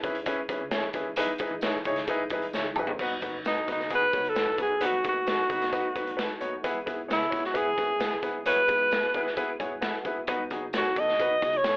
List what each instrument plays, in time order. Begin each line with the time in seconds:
Already playing: tonewheel organ G#3 C#4 E4
0.03 upright bass D#2, grand piano C#4 E4 G#4 B4, kick, closed hi-hat, tambourine, low conga
0.15 closed hi-hat
0.26 grand piano C#4 E4 G#4 B4, kick, closed hi-hat, tambourine, muted conga
0.48 upright bass E2, grand piano C#4 E4 G#4 B4, kick, closed hi-hat, tambourine, high conga
0.61 upright bass C#2
0.71 upright bass D#2, grand piano C#4 E4 G#4 C#5, snare, closed hi-hat, tambourine
0.84 muted conga, high conga
0.93 upright bass D#2, grand piano C#4 E4 G#4 B4, kick, closed hi-hat, tambourine, low conga
1.16 upright bass E2, tonewheel organ E3 D#4, grand piano D#4 E4 G#4 B4, closed hi-hat, tambourine, muted conga, low conga
1.27 muted conga, high conga
1.38 grand piano D#4 E4 G#4 B4, kick, closed hi-hat, tambourine
1.51 upright bass E2
1.61 upright bass D#2, grand piano D#4 E4 G#4 C#5, snare, closed hi-hat, tambourine, muted conga, high conga
1.84 upright bass C#2, grand piano D#4 E4 G#4 C#5, kick, closed hi-hat, tambourine, low conga
1.96 snare, closed hi-hat
2.07 upright bass B1, grand piano D#4 E4 G#4 B4, kick, closed hi-hat, tambourine
2.20 muted conga
2.30 upright bass E2, grand piano D#4 E4 G#4 B4, kick, closed hi-hat, tambourine, high conga
2.42 closed hi-hat
2.53 upright bass C#2, grand piano D#4 E4 G#4 C#5, snare, tambourine
2.65 muted conga, high conga
2.76 upright bass A#1, grand piano D#4 E4 G#4 B4, mid tom, tambourine, low conga
2.87 floor tom
2.99 upright bass B1, tonewheel organ F#3 B3 D#4, grand piano B3 D#4 F#4 B4, kick, crash, tambourine, low conga
3.09 muted conga, high conga
3.22 upright bass F#1, grand piano B3 D#4 F#4 B4, kick, closed hi-hat, tambourine
3.44 upright bass G#1, grand piano B3 D#4 F#4 B4, alto saxophone D#4, snare, closed hi-hat, tambourine, muted conga
3.67 upright bass F#1, grand piano B3 D#4 F#4 B4, kick, snare, closed hi-hat, tambourine, low conga
3.72 alto saxophone D#4
3.80 snare
3.90 grand piano B3 D#4 F#4 G#4, kick, closed hi-hat, tambourine
3.95 alto saxophone B4
4.02 muted conga
4.12 upright bass C#2, grand piano B3 D#4 F#4 C#5, kick, closed hi-hat, tambourine, high conga
4.25 closed hi-hat
4.29 alto saxophone A4
4.35 upright bass A1, grand piano B3 D#4 F#4 B4, snare, closed hi-hat, tambourine
4.47 muted conga, high conga
4.57 upright bass A#1, grand piano B3 D#4 F#4 B4, kick, closed hi-hat, tambourine, low conga
4.62 alto saxophone G#4
4.81 upright bass B1, tonewheel organ A3, grand piano B3 D#4 F#4 B4, closed hi-hat, tambourine, muted conga, low conga
4.85 alto saxophone F#4
4.92 muted conga, high conga
5.04 upright bass D#2, grand piano B3 D#4 F#4 B4, kick, closed hi-hat, tambourine
5.08 alto saxophone F#4
5.26 grand piano B3 D#4 F#4 B4, snare, closed hi-hat, tambourine
5.50 upright bass C#2, grand piano B3 D#4 F#4 B4, kick, closed hi-hat, tambourine, low conga
5.61 upright bass B1, snare, closed hi-hat
5.73 grand piano B3 D#4 F#4 B4, kick, closed hi-hat, tambourine
5.84 muted conga
5.95 upright bass D#2, grand piano B3 D#4 F#4 B4, kick, closed hi-hat, tambourine, high conga
6.07 upright bass B1, closed hi-hat
6.17 grand piano B3 D#4 F#4 B4, snare, closed hi-hat, tambourine
6.30 high conga
6.40 upright bass D#2, grand piano B3 D#4 F#4 C#5, closed hi-hat, tambourine, low conga
6.61 upright bass E2, tonewheel organ G#3 B3 E4, grand piano B3 E4 G#4 B4, kick, closed hi-hat, tambourine, muted conga, low conga
6.74 muted conga, high conga
6.86 upright bass B1, grand piano B3 E4 G#4 B4, kick, closed hi-hat, tambourine
7.08 upright bass C#2, grand piano B3 E4 G#4 C#5, snare, closed hi-hat, tambourine
7.12 alto saxophone E4
7.30 upright bass B1, grand piano B3 E4 G#4 C#5, kick, snare, closed hi-hat, tambourine, low conga
7.44 alto saxophone F#4, snare
7.54 grand piano B3 E4 G#4 B4, alto saxophone G#4, kick, closed hi-hat, tambourine
7.67 muted conga
7.77 upright bass F#2, grand piano B3 E4 G#4 B4, kick, closed hi-hat, tambourine, high conga
7.99 upright bass D2, grand piano B3 E4 G#4 B4, snare, closed hi-hat, tambourine
8.13 muted conga, high conga
8.22 upright bass D#2, grand piano B3 E4 G#4 B4, kick, closed hi-hat, tambourine, low conga
8.45 upright bass E2, grand piano B3 E4 G#4 C#5, tonewheel organ F#4, alto saxophone B4, closed hi-hat, tambourine, low conga
8.56 muted conga, high conga
8.68 upright bass G#2, grand piano B3 E4 G#4 B4, kick, closed hi-hat, tambourine
8.91 grand piano B3 E4 G#4 B4, snare, closed hi-hat, tambourine, high conga
9.14 upright bass F#2, grand piano B3 E4 G#4 B4, kick, closed hi-hat, tambourine, low conga
9.26 upright bass E2, snare
9.37 grand piano B3 E4 G#4 B4, kick, closed hi-hat, tambourine
9.59 upright bass G#2, grand piano B3 E4 G#4 C#5 G#5, kick, closed hi-hat, tambourine, high conga
9.71 upright bass E2
9.81 grand piano B3 E4 G#4 B4 F#5, snare, closed hi-hat, tambourine
9.94 high conga
10.04 upright bass F#2, grand piano B3 E4 G#4 B4 E5, kick, closed hi-hat, tambourine, low conga
10.17 upright bass E2
10.27 upright bass B1, tonewheel organ F#3 D#4, grand piano B3 D#4 F#4 B4, kick, closed hi-hat, tambourine, muted conga, low conga
10.38 high conga
10.50 upright bass F#1, grand piano B3 D#4 F#4 G#4, kick, closed hi-hat, tambourine
10.73 upright bass G#1, grand piano B3 D#4 F#4 C#5, snare, closed hi-hat, tambourine
10.77 alto saxophone F#4
10.96 upright bass F#1, grand piano B3 D#4 F#4 A4, alto saxophone D#5, kick, closed hi-hat, tambourine, low conga
11.08 snare
11.19 grand piano B3 D#4 F#4 B4, kick, closed hi-hat, tambourine
11.31 muted conga
11.41 upright bass C#2, grand piano B3 D#4 F#4 G#4, kick, closed hi-hat, tambourine, high conga
11.53 closed hi-hat
11.57 alto saxophone C#5
11.64 upright bass A1, grand piano B3 D#4 F#4 A4, snare, closed hi-hat, tambourine